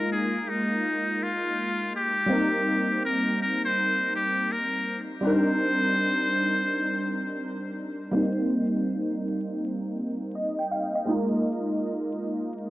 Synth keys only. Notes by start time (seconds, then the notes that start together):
Already playing: G#3 A#3 D#4 F4 A#4
2.26 G3 A#3 C4
2.31 D#4 A#4
5.21 G3 C4 D4
5.26 D#4 A#4
8.11 G3 A#3 C4
8.16 D#4 A#4
10.35 D#5
10.59 G5
10.71 F5
10.95 D#5
11.05 G#3 A#3 D#4
11.10 F4 A#4